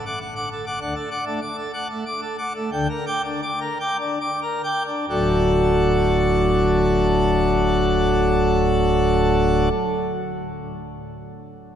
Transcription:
0.06 0.19 F#5 medium
0.06 0.19 D6 medium
0.21 0.34 F#5 medium
0.35 0.49 F#5 medium
0.35 0.49 D6 medium
0.52 0.65 A4 medium
0.66 0.79 F#5 medium
0.66 0.79 D6 medium
0.81 0.94 D2 medium
0.81 0.94 D3 medium
0.81 0.95 F#5 medium
0.95 1.09 A4 medium
1.11 1.24 F#5 medium
1.11 1.24 D6 medium
1.25 1.40 A3 medium
1.25 1.40 D4 medium
1.42 1.56 D6 medium
1.57 1.72 A4 medium
1.73 1.87 F#5 medium
1.73 1.87 D6 medium
1.90 2.04 A3 medium
2.06 2.20 D6 medium
2.22 2.37 A4 medium
2.38 2.53 F#5 medium
2.38 2.53 D6 medium
2.56 2.70 A3 medium
2.72 2.87 D2 loud
2.72 2.87 D3 medium
2.72 2.88 G5 loud
2.90 3.05 A#4 medium
3.06 3.22 G5 medium
3.06 3.22 D6 loud
3.24 3.40 D4 medium
3.42 3.59 D6 loud
3.61 3.78 A#4 medium
3.80 3.97 G5 medium
3.80 3.97 D6 medium
4.00 4.18 D4 loud
4.21 4.40 D6 loud
4.42 4.62 A#4 loud
4.64 4.83 G5 medium
4.64 4.83 D6 loud
4.86 5.06 D4 medium
5.09 9.69 D1 medium
5.09 9.69 D2 medium
5.09 9.69 A2 medium
5.09 9.69 F#3 medium
5.09 9.69 A3 medium
5.09 9.69 D4 medium
5.09 9.69 F#4 medium

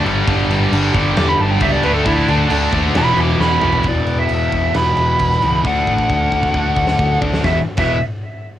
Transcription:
0.00 0.92 G2 medium
0.00 0.26 G2 medium
0.00 1.84 D4 loud
0.00 1.86 D4 medium
0.05 0.20 G1 loud
0.05 0.93 D3 medium
0.05 0.27 D3 loud
0.05 0.27 G3 loud
0.05 0.91 G3 loud
0.05 crash medium
0.27 0.43 G1 medium
0.27 0.48 G2 loud
0.27 0.49 D3 loud
0.27 0.49 G3 loud
0.27 kick loud
0.27 crash medium
0.49 0.65 G1 medium
0.49 0.70 G2 loud
0.49 0.71 D3 loud
0.49 0.71 G3 loud
0.49 crash medium
0.72 0.87 G1 loud
0.72 0.93 G2 medium
0.72 0.94 D3 loud
0.72 0.95 G3 loud
0.72 crash loud
0.92 1.10 G1 loud
0.92 1.15 G2 medium
0.92 1.83 G2 medium
0.92 1.82 D3 medium
0.92 1.16 D3 medium
0.92 1.81 G3 medium
0.92 1.16 G3 loud
0.92 kick medium
0.92 crash medium
1.16 1.33 E1 loud
1.16 1.37 G2 loud
1.16 1.38 D3 loud
1.16 1.39 G3 loud
1.16 1.29 D6 loud
1.16 snare loud
1.16 crash medium
1.29 1.41 B5 loud
1.38 1.55 G1 loud
1.38 1.60 G2 loud
1.38 1.61 D3 loud
1.38 1.61 G3 loud
1.38 1.51 A5 medium
1.38 crash medium
1.51 1.61 G5 medium
1.60 1.76 C#2 loud
1.60 1.82 G2 medium
1.60 1.82 D3 loud
1.60 1.83 G3 loud
1.60 1.72 E5 loud
1.60 kick medium
1.60 crash medium
1.72 1.83 D5 loud
1.83 2.00 D2 loud
1.83 2.71 D3 medium
1.83 2.04 D3 loud
1.83 2.05 A3 loud
1.83 2.72 A3 loud
1.83 2.05 D4 loud
1.83 2.71 D4 loud
1.83 1.93 B4 medium
1.83 crash medium
1.94 2.05 A4 loud
2.05 2.21 D2 medium
2.05 2.27 D3 medium
2.05 2.28 A3 loud
2.05 2.28 D4 loud
2.05 2.28 E4 loud
2.05 kick loud
2.05 crash medium
2.28 2.44 D2 loud
2.28 2.50 D3 medium
2.28 2.50 A3 medium
2.28 2.50 D4 loud
2.28 2.51 D4 loud
2.28 crash medium
2.50 2.66 D2 medium
2.50 2.72 D3 loud
2.50 2.73 A3 loud
2.50 2.73 D4 loud
2.50 crash loud
2.72 2.88 D#2 medium
2.72 2.94 D3 medium
2.72 2.95 D3 medium
2.72 2.94 A3 medium
2.72 2.95 A3 medium
2.72 2.94 D4 medium
2.72 2.95 D4 medium
2.72 kick medium
2.72 crash medium
2.94 3.11 E1 loud
2.94 3.83 E2 loud
2.94 3.16 E2 loud
2.94 3.84 B2 loud
2.94 3.17 B2 loud
2.94 3.18 E3 loud
2.94 3.84 E3 loud
2.94 snare loud
2.94 crash medium
2.98 3.18 B5 loud
3.17 3.33 E1 medium
3.17 3.39 E2 medium
3.17 3.40 B2 medium
3.17 3.41 E3 loud
3.17 3.41 D6 medium
3.17 crash medium
3.40 3.55 E1 medium
3.40 3.62 E2 medium
3.40 3.62 B2 medium
3.40 3.63 E3 loud
3.40 3.84 B5 loud
3.40 snare medium
3.61 3.78 B1 loud
3.61 3.84 E2 medium
3.61 3.84 B2 loud
3.61 3.84 E3 medium
3.61 mid tom loud
3.73 floor tom medium
3.83 4.00 E1 medium
3.83 5.40 E2 medium
3.83 4.72 E2 medium
3.83 5.41 B2 medium
3.83 4.74 B2 medium
3.83 kick medium
3.83 crash medium
3.88 4.75 E3 medium
3.88 5.41 E3 medium
3.88 4.18 D5 medium
4.07 4.23 E1 medium
4.07 crash medium
4.19 4.77 E5 medium
4.29 4.46 E1 medium
4.29 crash medium
4.52 4.69 E1 medium
4.52 kick medium
4.52 crash medium
4.73 4.91 E1 medium
4.73 5.62 E2 medium
4.73 5.63 B2 medium
4.73 5.64 E3 medium
4.73 5.61 B5 loud
4.73 snare loud
4.73 crash medium
4.97 5.14 E1 medium
4.97 crash medium
5.19 5.36 E1 medium
5.19 kick medium
5.19 crash medium
5.31 snare soft
5.42 5.59 C#2 medium
5.42 5.65 E2 medium
5.42 5.63 B2 medium
5.42 5.63 E3 medium
5.42 crash medium
5.63 5.81 D2 medium
5.63 6.52 D3 loud
5.63 7.20 D3 medium
5.63 6.53 A3 loud
5.63 7.21 A3 loud
5.63 6.54 D4 loud
5.63 7.20 D4 medium
5.63 7.19 F#5 medium
5.63 kick loud
5.87 6.03 A1 medium
5.87 kick medium
5.98 kick medium
6.10 6.26 D2 medium
6.10 kick medium
6.32 6.48 D2 medium
6.32 kick medium
6.43 kick medium
6.54 6.70 D2 loud
6.54 7.42 D3 medium
6.54 7.43 A3 medium
6.54 7.44 D4 medium
6.54 kick medium
6.77 6.93 D2 medium
6.77 kick medium
6.87 snare medium
6.99 7.15 D2 medium
6.99 kick medium
7.22 7.38 D2 medium
7.22 7.44 D3 medium
7.22 7.43 A3 medium
7.22 7.43 D4 medium
7.22 kick loud
7.33 snare medium
7.43 7.57 E1 medium
7.43 7.57 E2 loud
7.43 7.57 B2 medium
7.43 7.58 B2 medium
7.43 7.58 E3 loud
7.43 7.57 E5 medium
7.43 kick loud
7.43 snare medium
7.77 7.99 E1 medium
7.77 7.95 E2 medium
7.77 7.95 E2 loud
7.77 7.96 B2 medium
7.77 7.96 B2 loud
7.77 7.96 E3 loud
7.77 7.99 E5 medium
7.77 kick loud
7.77 crash medium

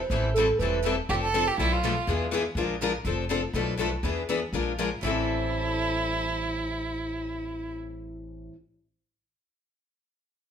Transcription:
0.00 0.34 C5 loud
0.10 0.49 A1 medium
0.10 0.28 E3 medium
0.10 0.28 G3 medium
0.10 0.29 C4 medium
0.10 0.29 E4 medium
0.10 0.29 A4 medium
0.34 0.45 E3 medium
0.34 0.46 G3 medium
0.34 0.45 C4 medium
0.34 0.46 E4 medium
0.34 0.46 A4 medium
0.59 0.99 E1 medium
0.59 0.77 E3 medium
0.59 0.78 G3 medium
0.59 0.77 C4 medium
0.59 0.78 E4 medium
0.59 0.78 A4 medium
0.59 0.94 B4 medium
0.83 0.93 E3 medium
0.83 0.93 G3 medium
0.83 0.94 C4 medium
0.83 0.94 E4 medium
0.83 0.94 A4 medium
1.09 1.48 F1 medium
1.09 1.27 F3 medium
1.09 1.27 C4 medium
1.09 1.27 D4 medium
1.09 1.15 G4 medium
1.09 1.27 A4 medium
1.23 1.49 A4 medium
1.35 1.44 F3 medium
1.35 1.44 C4 medium
1.35 1.44 D4 medium
1.35 1.45 A4 medium
1.48 1.58 G4 medium
1.58 1.97 B1 medium
1.58 1.77 B2 medium
1.58 1.77 F3 medium
1.58 1.77 A3 medium
1.58 1.77 D4 medium
1.58 1.74 E4 medium
1.58 1.77 A4 medium
1.58 1.78 B4 medium
1.72 2.21 F4 medium
1.83 1.93 B2 medium
1.83 1.93 F3 medium
1.83 1.93 A3 medium
1.83 1.93 D4 medium
1.83 1.93 A4 medium
1.83 1.93 B4 medium
2.07 2.47 E2 medium
2.07 2.26 E3 medium
2.07 2.26 B3 medium
2.07 2.26 D4 medium
2.07 2.26 G#4 medium
2.07 2.27 B4 medium
2.33 2.42 E3 medium
2.33 2.42 B3 medium
2.33 2.43 D4 medium
2.33 2.43 G#4 loud
2.33 2.43 B4 medium
2.55 2.95 A#1 medium
2.55 2.74 F3 medium
2.55 2.75 G#3 medium
2.55 2.75 D4 medium
2.55 2.75 F4 medium
2.55 2.75 A#4 medium
2.81 2.91 F3 medium
2.81 2.91 G#3 medium
2.81 2.91 D4 medium
2.81 2.91 F4 medium
2.81 2.91 A#4 loud
3.05 3.44 F1 medium
3.05 3.23 F3 medium
3.05 3.23 C4 medium
3.05 3.23 D4 medium
3.05 3.24 A4 medium
3.30 3.40 F3 medium
3.30 3.40 C4 medium
3.30 3.40 D4 medium
3.30 3.41 A4 loud
3.53 3.93 B1 medium
3.53 3.72 B2 medium
3.53 3.73 F3 medium
3.53 3.73 A3 medium
3.53 3.73 D4 medium
3.53 3.73 A4 medium
3.53 3.73 B4 medium
3.79 3.89 B2 medium
3.79 3.90 F3 medium
3.79 3.90 A3 medium
3.79 3.90 D4 medium
3.79 3.90 A4 medium
3.79 3.90 B4 medium
4.03 4.43 E2 medium
4.03 4.22 E3 medium
4.03 4.22 B3 medium
4.03 4.22 D4 medium
4.03 4.22 G#4 medium
4.03 4.22 B4 medium
4.29 4.39 E3 medium
4.29 4.39 B3 medium
4.29 4.39 D4 medium
4.29 4.39 G#4 medium
4.29 4.39 B4 medium
4.53 4.92 A#1 medium
4.53 4.72 F3 medium
4.53 4.72 G#3 medium
4.53 4.72 D4 medium
4.53 4.72 F4 medium
4.53 4.72 A#4 medium
4.79 4.88 F3 medium
4.79 4.88 G#3 medium
4.79 4.88 D4 medium
4.79 4.88 F4 medium
4.79 4.89 A#4 medium
5.01 8.46 A1 medium
5.01 8.51 A2 medium
5.01 8.53 E3 medium
5.01 8.53 G3 medium
5.01 8.53 C4 medium
5.01 7.76 E4 medium
5.01 8.54 E4 medium
5.01 8.54 A4 medium

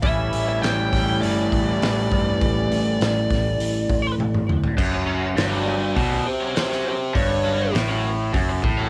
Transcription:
0.01 0.29 A1 loud
0.01 4.77 A2 medium
0.01 4.77 E3 medium
0.01 4.78 E3 medium
0.01 4.78 G3 medium
0.01 4.78 C#4 medium
0.01 4.79 C#4 medium
0.01 4.78 E4 medium
0.01 0.47 E5 medium
0.01 kick loud
0.01 open hi-hat medium
0.05 4.79 E4 medium
0.33 0.60 A1 medium
0.33 open hi-hat medium
0.49 0.62 E5 medium
0.62 0.89 A1 medium
0.62 1.22 G5 loud
0.62 snare loud
0.62 open hi-hat medium
0.93 1.19 A1 medium
0.93 kick medium
0.93 snare soft
0.93 open hi-hat medium
1.22 1.48 G1 medium
1.22 4.14 D5 medium
1.22 open hi-hat medium
1.52 1.78 A1 medium
1.52 kick medium
1.52 open hi-hat medium
1.82 2.07 A1 medium
1.82 snare loud
1.82 open hi-hat medium
2.12 2.37 G2 medium
2.12 kick medium
2.12 open hi-hat medium
2.41 2.67 A1 loud
2.41 kick loud
2.41 open hi-hat medium
2.71 2.96 A1 medium
2.71 open hi-hat medium
3.00 3.26 A1 medium
3.00 snare loud
3.00 open hi-hat medium
3.31 3.56 A1 medium
3.31 kick medium
3.31 snare soft
3.31 open hi-hat medium
3.59 3.85 A1 medium
3.59 open hi-hat medium
3.89 4.15 A1 medium
3.89 kick medium
3.89 open hi-hat medium
4.18 4.44 A1 medium
4.18 high tom medium
4.34 mid tom medium
4.49 4.74 D2 loud
4.49 mid tom medium
4.63 floor tom medium
4.77 5.34 F#1 medium
4.77 5.36 F#2 medium
4.77 kick loud
4.77 crash loud
4.92 muted overdriven electric guitar stroke medium
5.06 5.26 F#3 medium
5.06 5.26 C#4 medium
5.06 5.27 F#4 medium
5.06 5.27 C#5 medium
5.35 5.93 G1 medium
5.35 5.96 G2 loud
5.35 5.67 F#4 medium
5.35 muted overdriven electric guitar stroke soft
5.35 snare loud
5.35 open hi-hat medium
5.40 5.67 D5 medium
5.50 5.71 F#3 medium
5.50 5.71 C#4 medium
5.50 5.71 F#4 medium
5.50 5.70 C#5 medium
5.68 5.95 F#4 medium
5.68 5.95 D5 medium
5.96 6.24 B1 medium
5.96 6.25 B2 loud
5.96 6.24 F#4 medium
5.96 6.26 D5 medium
5.96 muted overdriven electric guitar stroke medium
5.96 kick loud
5.96 open hi-hat medium
6.11 muted overdriven electric guitar stroke soft
6.26 6.54 G4 medium
6.26 6.56 C5 medium
6.40 6.61 F#3 medium
6.40 6.61 C#4 medium
6.40 6.61 F#4 medium
6.40 6.60 C#5 medium
6.56 6.84 G4 medium
6.56 6.85 C5 medium
6.56 snare loud
6.56 open hi-hat medium
6.70 6.90 F#3 medium
6.70 6.90 C#4 medium
6.70 6.90 F#4 medium
6.70 6.90 C#5 medium
6.70 snare soft
6.88 7.15 G4 medium
6.88 7.15 C5 medium
7.14 7.71 G1 medium
7.14 7.73 G2 loud
7.14 7.73 C#5 medium
7.14 kick medium
7.14 open hi-hat medium
7.29 muted overdriven electric guitar stroke medium
7.44 7.64 F#3 medium
7.44 7.64 C#4 medium
7.44 7.64 F#4 loud
7.44 7.65 C#5 loud
7.72 8.30 A1 medium
7.72 8.32 A2 loud
7.72 muted overdriven electric guitar stroke soft
7.72 open hi-hat medium
7.76 snare loud
7.88 8.09 F#3 medium
7.88 8.08 C#4 medium
7.88 8.08 F#4 medium
7.88 8.08 C#5 medium
8.33 8.62 F#1 medium
8.33 8.62 F#2 loud
8.33 muted overdriven electric guitar stroke soft
8.33 kick loud
8.33 open hi-hat medium
8.49 muted overdriven electric guitar stroke soft
8.63 8.89 A1 medium
8.63 8.89 A2 loud
8.63 kick loud
8.77 8.89 F#3 medium
8.77 8.89 C#4 medium
8.77 8.89 F#4 medium
8.77 8.89 C#5 medium

